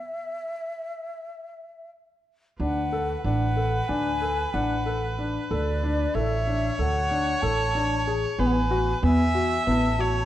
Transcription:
0.00 1.90 E5 medium
2.60 3.14 D2 medium
2.60 2.79 D4 medium
2.60 6.16 B4 medium
2.60 3.21 F#5 medium
2.93 3.11 A4 medium
3.24 3.79 A1 medium
3.24 3.44 D4 medium
3.24 3.90 F#5 medium
3.57 3.76 A4 medium
3.89 4.44 D2 medium
3.89 4.08 D4 medium
3.89 4.55 G#5 loud
4.22 4.41 A4 medium
4.54 5.36 A1 medium
4.54 4.73 D4 medium
4.54 5.19 F#5 medium
4.86 5.05 A4 medium
5.19 5.37 D4 medium
5.51 6.05 D2 medium
5.51 5.70 A4 medium
5.51 6.16 D5 medium
5.84 6.02 D4 medium
6.14 6.69 A1 medium
6.14 6.34 A4 medium
6.14 8.41 C#5 loud
6.14 6.79 E5 medium
6.47 6.66 D4 medium
6.79 7.33 D2 medium
6.79 6.98 A4 medium
6.79 7.44 F#5 medium
7.11 7.30 D4 medium
7.42 8.24 A1 medium
7.42 7.61 A4 medium
7.42 8.14 A5 loud
7.75 7.94 D4 medium
8.07 8.26 G#4 medium
8.39 8.93 A1 medium
8.39 8.58 B3 medium
8.39 9.04 B4 medium
8.39 8.48 G#5 medium
8.47 8.54 F#5 medium
8.53 9.02 G#5 loud
8.71 8.89 F#4 medium
9.03 9.57 E2 medium
9.03 9.22 B3 medium
9.03 10.01 E5 loud
9.03 9.63 G#5 medium
9.35 9.54 F#4 medium
9.67 10.21 A1 medium
9.67 9.86 B3 medium
9.67 10.25 A5 loud
9.99 10.18 F#4 medium
9.99 10.25 C#5 loud

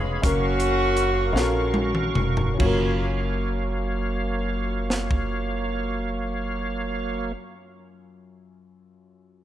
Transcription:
0.00 0.21 F1 medium
0.00 0.26 C#3 medium
0.00 0.20 G#3 medium
0.00 0.20 B3 medium
0.00 0.22 C#4 medium
0.00 0.26 F4 medium
0.00 0.21 G#4 medium
0.00 0.25 G#4 medium
0.00 0.25 B4 medium
0.00 0.21 C#5 medium
0.00 0.26 C#5 medium
0.00 2.56 F5 soft
0.00 0.21 B5 medium
0.22 1.30 F#1 medium
0.22 1.70 A#3 medium
0.22 1.10 C#4 medium
0.22 1.70 C#4 medium
0.22 1.11 F#4 medium
0.22 2.58 F#4 medium
0.22 1.70 F#4 medium
0.22 2.58 A#4 medium
0.22 1.12 A#4 medium
0.22 1.11 F5 medium
0.22 2.58 C#6 medium
0.22 kick medium
0.22 closed hi-hat medium
0.60 closed hi-hat soft
0.97 closed hi-hat soft
1.32 2.11 A#1 medium
1.32 2.33 C#4 medium
1.32 2.34 F#4 medium
1.32 1.43 A4 medium
1.32 2.33 F5 medium
1.32 snare medium
1.41 2.37 A#4 medium
1.74 high tom medium
1.95 mid tom medium
2.15 2.56 F1 medium
2.15 mid tom medium
2.37 floor tom medium
2.54 7.25 C#4 medium
2.58 7.31 F#1 medium
2.58 7.32 F#2 medium
2.58 7.32 F#3 soft
2.58 7.32 A#3 medium
2.58 7.30 F4 medium
2.58 7.33 F#4 medium
2.58 7.32 C#5 medium
2.58 7.32 F5 soft
2.58 kick medium
2.58 crash medium
2.65 7.37 A#4 medium
4.90 snare soft
5.11 kick medium

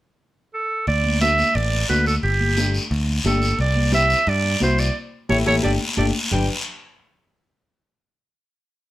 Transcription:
0.54 0.85 A4 medium
0.87 1.42 D2 medium
0.87 1.19 D5 loud
0.87 high conga soft
0.87 long guiro medium
1.04 high conga medium
1.21 1.45 A3 medium
1.21 1.45 D4 medium
1.21 1.45 F#4 medium
1.21 1.57 E5 loud
1.21 high conga medium
1.21 short guiro medium
1.38 high conga medium
1.38 short guiro medium
1.55 1.83 A1 medium
1.55 1.89 D5 loud
1.55 long guiro medium
1.73 high conga soft
1.88 2.17 D2 medium
1.88 2.13 A3 medium
1.88 2.13 D4 medium
1.88 2.13 F#4 medium
1.88 2.05 B4 medium
1.88 high conga medium
1.88 short guiro medium
2.06 2.14 A4 medium
2.06 short guiro medium
2.23 2.78 G1 medium
2.23 2.87 G4 medium
2.23 high conga soft
2.23 long guiro medium
2.41 high conga medium
2.57 2.81 A3 medium
2.57 2.81 D4 medium
2.57 2.81 G4 medium
2.57 high conga medium
2.57 short guiro medium
2.74 short guiro medium
2.91 3.18 D2 medium
2.91 long guiro medium
3.09 high conga soft
3.24 3.52 G1 medium
3.24 3.49 A3 medium
3.24 3.49 D4 medium
3.24 3.49 G4 medium
3.24 3.58 A4 medium
3.24 high conga medium
3.24 short guiro medium
3.42 short guiro medium
3.59 4.13 C2 medium
3.59 3.92 D5 loud
3.59 high conga soft
3.59 long guiro medium
3.76 high conga medium
3.92 4.17 C4 medium
3.92 4.17 E4 medium
3.92 4.17 G4 medium
3.92 4.30 E5 loud
3.92 high conga loud
3.92 short guiro medium
4.10 short guiro medium
4.27 4.55 G2 medium
4.27 4.62 D5 loud
4.27 long guiro medium
4.44 high conga soft
4.60 4.89 C2 medium
4.60 4.85 C4 medium
4.60 4.86 E4 medium
4.60 4.86 F#4 medium
4.60 4.81 C5 medium
4.60 high conga medium
4.60 short guiro medium
4.78 4.96 D5 medium
4.78 short guiro medium
5.29 5.43 A1 medium
5.29 5.40 E4 medium
5.29 5.40 G4 medium
5.29 5.41 A4 medium
5.29 5.38 C#5 medium
5.29 high conga loud
5.29 long guiro medium
5.46 5.59 A1 medium
5.46 5.57 E4 medium
5.46 5.57 G4 loud
5.46 5.57 A4 loud
5.46 5.55 C#5 medium
5.46 high conga loud
5.46 long guiro loud
5.63 5.77 G1 medium
5.63 5.74 A3 medium
5.63 5.74 D4 loud
5.63 5.74 G4 loud
5.63 5.72 D5 medium
5.63 high conga medium
5.63 long guiro medium
5.97 6.10 G1 loud
5.97 6.08 A3 medium
5.97 6.08 D4 loud
5.97 6.08 G4 medium
5.97 6.06 D5 medium
5.97 high conga loud
5.97 long guiro medium
6.31 6.48 G1 medium
6.31 6.48 D4 medium
6.31 6.48 G4 medium
6.31 6.48 B4 medium
6.31 6.48 G5 medium
6.31 low conga loud
6.31 long guiro medium

